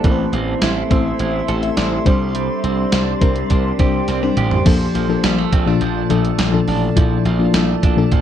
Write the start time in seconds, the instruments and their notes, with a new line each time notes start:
Already playing: clean electric guitar A#3 D4 A4
0.04 slap bass A1, clean electric guitar E3, fm electric piano A3 C4 E4 A#4, ambient pad A4 C5 E5 C6, kick, closed hi-hat
0.11 fm electric piano C5
0.32 slap bass A1, clean electric guitar C4, closed hi-hat
0.62 slap bass A1, clean electric guitar E4, snare, closed hi-hat
0.90 slap bass A1, fm electric piano A3 C4 E4 C5, clean electric guitar C4, kick, closed hi-hat
1.19 slap bass A1, clean electric guitar E4, closed hi-hat
1.48 slap bass A1, fm electric piano G4 C5, clean electric guitar A4, closed hi-hat
1.63 fm electric piano A4 E5, closed hi-hat
1.77 slap bass A1, clean electric guitar E4, fm electric piano A4 D5, snare, closed hi-hat
1.92 fm electric piano G4 C5
2.05 slap bass C2, fm electric piano G3 C4 D4 C5, clean electric guitar G3, ambient pad G4 D5, kick, closed hi-hat
2.35 clean electric guitar G3, closed hi-hat
2.64 slap bass C2, clean electric guitar C4, closed hi-hat
2.92 slap bass C2, clean electric guitar D4, snare, closed hi-hat
3.21 slap bass C2, fm electric piano G3 C4 D4 A#4, clean electric guitar C4, kick, closed hi-hat
3.36 closed hi-hat
3.50 slap bass C2, clean electric guitar D4, kick, closed hi-hat
3.79 slap bass C2, fm electric piano G3 C4 D4 C5, clean electric guitar G4, kick, closed hi-hat
4.08 slap bass C2, clean electric guitar C4, snare, closed hi-hat
4.22 fm electric piano G3 C4 D4 C5, clean electric guitar D4
4.37 slap bass A1, clean electric guitar G4, closed hi-hat, mid tom
4.51 floor tom
4.66 slap bass A#1, fm electric piano F3 A#3 D4 A4, clean electric guitar F3, ambient pad D5 A5, kick, closed hi-hat, crash
4.95 slap bass A#1, clean electric guitar F3, closed hi-hat
5.09 fm electric piano F3 A#3 D4 A4
5.24 slap bass A#1, clean electric guitar G3, snare, closed hi-hat
5.38 clean electric guitar A3
5.53 slap bass A#1, clean electric guitar C4, kick, closed hi-hat
5.66 fm electric piano A#2 F3 D4 F4, clean electric guitar D4
5.81 slap bass A#1, clean electric guitar F3, closed hi-hat
6.09 slap bass A#1, fm electric piano A#2 F3 D4 A4, clean electric guitar A3, closed hi-hat
6.25 closed hi-hat
6.39 slap bass A#1, clean electric guitar F3, snare, closed hi-hat
6.53 fm electric piano A#2 F3 D4 A4
6.68 slap bass A1, clean electric guitar D4, open hi-hat
6.96 slap bass A#1, fm electric piano A#2 F3 D4 E4, clean electric guitar F3, ambient pad A5, kick, closed hi-hat
7.25 slap bass A#1, clean electric guitar F3, closed hi-hat
7.39 fm electric piano F3 A#3 D4 F4
7.54 slap bass A#1, clean electric guitar A3, snare, closed hi-hat
7.83 slap bass A#1, clean electric guitar D4, kick, closed hi-hat
7.97 fm electric piano A#2 F3 D4 A4
8.12 slap bass A#1, clean electric guitar F3, kick, closed hi-hat